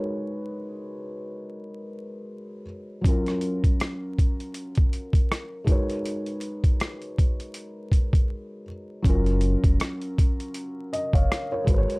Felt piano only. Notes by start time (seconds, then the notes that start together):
Already playing: G#3 D#4 F#4 A#4 B4 C#5
3.02 F#3 C#4
3.07 F4 A#4
5.64 G#3 D#4 F#4
5.69 A#4 B4 C#5
9.02 F#3 C#4
9.07 F4 A#4
10.93 D#5
11.14 C#5 F5
11.52 A#4 C#5
11.65 G#3 F#4 A#4
11.70 B4 C5
11.78 C#5